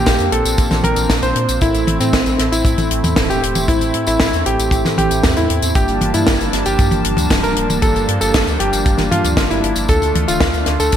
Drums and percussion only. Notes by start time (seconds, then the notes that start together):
0.06 kick, snare, closed hi-hat, tambourine
0.19 closed hi-hat, tambourine
0.32 closed hi-hat
0.45 closed hi-hat, tambourine
0.58 kick, closed hi-hat, tambourine
0.71 snare, closed hi-hat, high tom, tambourine
0.84 closed hi-hat, high tom
0.96 closed hi-hat, tambourine
1.09 kick, snare, closed hi-hat, tambourine
1.22 closed hi-hat, tambourine
1.36 closed hi-hat
1.49 closed hi-hat, tambourine
1.61 kick, closed hi-hat, tambourine
1.74 closed hi-hat, tambourine
1.87 closed hi-hat, high tom
2.00 closed hi-hat, tambourine
2.13 kick, snare, closed hi-hat, tambourine
2.26 closed hi-hat, tambourine
2.39 snare, closed hi-hat
2.52 closed hi-hat, tambourine
2.65 kick, closed hi-hat, tambourine
2.78 closed hi-hat, high tom, tambourine
2.91 closed hi-hat
3.04 closed hi-hat, high tom, tambourine
3.16 kick, snare, closed hi-hat, tambourine
3.30 closed hi-hat, tambourine
3.43 closed hi-hat
3.55 closed hi-hat, high tom, tambourine
3.68 kick, closed hi-hat, tambourine
3.81 closed hi-hat, tambourine
3.94 closed hi-hat
4.07 closed hi-hat, tambourine
4.20 kick, snare, closed hi-hat, tambourine
4.33 closed hi-hat, tambourine
4.46 closed hi-hat
4.59 closed hi-hat, tambourine
4.71 kick, closed hi-hat, tambourine
4.85 snare, closed hi-hat, high tom, tambourine
4.98 closed hi-hat, high tom
5.11 closed hi-hat, tambourine
5.24 kick, snare, closed hi-hat, tambourine
5.36 closed hi-hat, tambourine
5.50 closed hi-hat
5.62 closed hi-hat, tambourine
5.75 kick, closed hi-hat, tambourine
5.88 closed hi-hat, tambourine
6.01 closed hi-hat, high tom
6.14 closed hi-hat, tambourine
6.27 kick, snare, closed hi-hat, tambourine
6.41 closed hi-hat, tambourine
6.53 snare, closed hi-hat
6.65 closed hi-hat, tambourine
6.78 kick, closed hi-hat, tambourine
6.91 closed hi-hat, high tom, tambourine
7.04 closed hi-hat
7.17 closed hi-hat, high tom, tambourine
7.30 kick, snare, closed hi-hat, tambourine
7.43 closed hi-hat, tambourine
7.56 closed hi-hat
7.70 closed hi-hat, high tom, tambourine
7.82 kick, closed hi-hat, tambourine
7.96 closed hi-hat, tambourine
8.08 closed hi-hat
8.21 closed hi-hat, tambourine
8.34 kick, snare, closed hi-hat, tambourine
8.47 closed hi-hat, tambourine
8.60 closed hi-hat
8.73 closed hi-hat, tambourine
8.86 kick, closed hi-hat, tambourine
8.98 snare, closed hi-hat, high tom, tambourine
9.12 closed hi-hat, high tom
9.24 closed hi-hat, tambourine
9.37 kick, snare, closed hi-hat, tambourine
9.51 closed hi-hat, tambourine
9.64 closed hi-hat
9.76 closed hi-hat, tambourine
9.88 kick, closed hi-hat, tambourine
10.02 closed hi-hat, tambourine
10.15 closed hi-hat, high tom
10.28 closed hi-hat, tambourine
10.40 kick, snare, closed hi-hat, tambourine
10.53 closed hi-hat, tambourine
10.66 snare, closed hi-hat
10.80 closed hi-hat, tambourine
10.92 kick, closed hi-hat, tambourine